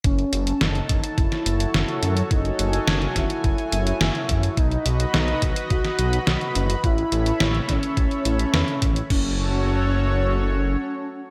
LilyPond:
<<
  \new Staff \with { instrumentName = "Analog synth pad" } { \time 4/4 \key fis \dorian \tempo 4 = 106 << { a''1 | gis''1 | b''1~ | b''1 |
<fis' a' cis''>1 | } \\ { <fis' a' cis''>1~ | <fis' a' cis''>1 | <fis' b' dis''>1 | <a' cis'' e''>1 |
r1 | } >> }
  \new Staff \with { instrumentName = "Analog synth lead" } { \time 4/4 \key fis \dorian cis'4 dis'4 e'2 | dis'4. e'2~ e'8 | dis'8 r8 dis'8 r8 fis'2 | e'4. cis'2~ cis'8 |
cis'1 | }
  \new Staff \with { instrumentName = "Detuned saw bass" } { \clef bass \time 4/4 \key fis \dorian fis,,8 fis,,8 fis,,8 fis,,8 fis,,8 fis,,8 fis,,8 fis,8 | fis,,8 fis,,8 fis,,8 fis,,8 fis,,8 fis,,8 fis,,8 fis,8 | b,,8 b,,8 b,,8 b,,8 b,,8 b,,8 b,,8 fis,,8 | a,,8 a,,8 a,,8 a,,8 a,,8 a,,8 e,8 a,,8 |
fis,,2. r4 | }
  \new DrumStaff \with { instrumentName = "Drums" } \drummode { \time 4/4 <hh bd>16 hh16 hh16 hh16 <hh sn>16 hh16 <hh bd>16 hh16 <hh bd>16 <hh sn>16 hh16 hh16 <hh sn>16 hh16 hh16 hh16 | <hh bd>16 hh16 hh16 hh16 <hh sn>16 hh16 <hh bd sn>16 hh16 <hh bd>16 hh16 hh16 hh16 <hh sn>16 hh16 <hh bd>16 hh16 | <hh bd>16 hh16 hh16 hh16 <hh sn>16 hh16 <hh bd>16 hh16 <hh bd>16 <hh sn>16 hh16 hh16 <hh sn>16 hh16 hh16 hh16 | <hh bd>16 hh16 hh16 hh16 <hh sn>16 hh16 <hh bd sn>16 hh16 <hh bd>16 hh16 hh16 hh16 <hh sn>16 hh16 <hh bd>16 hh16 |
<cymc bd>4 r4 r4 r4 | }
>>